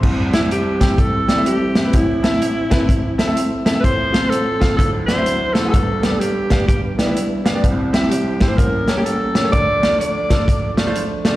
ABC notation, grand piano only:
X:1
M:4/4
L:1/16
Q:"Swing" 1/4=126
K:C
V:1 name="Grand piano"
[ec']2 [CEGe] z3 [CEGg] z3 [CEGd] [CEGe] z2 [CEGe] [CEGB] | z2 [CEAe] z3 [CEAB] z3 [CEAe] [CEAe] z2 [CEAe] [CEAe] | z2 [CFAf] z3 [CFAf] z3 [CE^Fd] [CEFe] z2 [CEFA] [CEFB] | z2 [B,DGd] z3 [B,DGf] z3 [B,DGd] [B,DGe] z2 [B,DGf] [B,DGd] |
z2 [CEGe] z3 [CEGc] z3 [_B,GA^c] [B,GAc] z2 [B,GAc] [B,GAc] | z2 [A,DFd] z3 [A,DFA] z3 [A,DFd] [A,DFc] z2 [A,DFd] z |]
V:2 name="Grand piano" clef=bass
[C,,C,]16 | [A,,,A,,]16 | [A,,,A,,]8 [D,,D,]8 | [G,,,G,,]16 |
[C,,C,]8 [A,,,A,,]8 | [D,,D,]16 |]